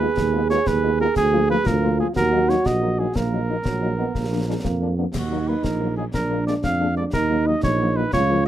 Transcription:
Already playing: G#4 B4
0.00 B3 F4
0.17 D#2, concert bass drum, snare
0.34 G#3 B3 F4
0.50 G#3 B3 F4 C#5, snare
0.66 D#2 B4, concert bass drum, snare
0.84 G#3 B3 F4
1.00 G#3 B3 F4 A#4
1.16 D2 G#4, concert bass drum, snare, crash
1.33 F3 A#3 F4
1.50 F3 A#3 F4 B4
1.66 D2 F4 A#4, concert bass drum, snare
1.82 F3 A#3 F4
1.99 F3 A#3 F4 G#4
2.16 D#2 F#4 A#4, concert bass drum, snare
2.32 F#3 A#3 D#4
2.49 F#3 A#3 D#4 C#5, snare
2.66 A#1 D#5, concert bass drum, snare
2.82 F#3 A#3 D#4
2.99 F#3 A#3 D#4 G#4
3.16 A#1 A#3 A#4, concert bass drum, snare
3.33 F#3 A#3 D#4
3.49 F#3 A#3 D#4
3.65 A#1 F#3, concert bass drum, snare
3.81 F#3 A#3 D#4
3.98 F#3 A#3 B3 D#4
4.15 A#1 A#3, concert bass drum, snare
4.32 F3 A#3 D4
4.48 F3 G#3 A#3 D4
4.63 F2 A#3, concert bass drum, snare
4.82 F3 A#3 D4
4.97 F3 A#3 B3 D4
5.14 D#2 D#4 F#4, concert bass drum, snare, crash
5.31 F#3 A#3 D#4
5.47 F#3 A#3 D#4 B4
5.63 A#1 A#4, concert bass drum, snare
5.80 F#3 A#3 D#4
5.97 F#3 A#3 D#4 G#4
6.13 A#1 D4 A#4, concert bass drum, snare
6.30 G#3 A#3 D4
6.47 G#3 A#3 D4 D5, snare
6.64 F2 F5, concert bass drum, snare
6.80 G#3 A#3 D4
6.96 G#3 A#3 D4 D5
7.13 D#2 D#4 A#4, concert bass drum, snare
7.30 F#3 A#3 D#4
7.46 F#3 A#3 D#4 D#5
7.63 A#1 C#5, concert bass drum, snare
7.79 F#3 A#3 D#4
7.96 F#3 A#3 D#4 B4
8.13 C#2 F4 C#5, concert bass drum, snare
8.30 F3 A#3 F4

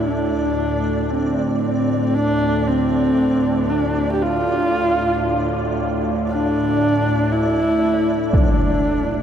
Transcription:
Already playing: D2 A2 D3 A3 D4 D5
0.07 D4
1.10 C4
1.62 C4
2.14 D4
2.67 C4
3.69 D4
4.12 G4
4.22 F4
6.29 D4
7.32 E4
8.33 D4, impact

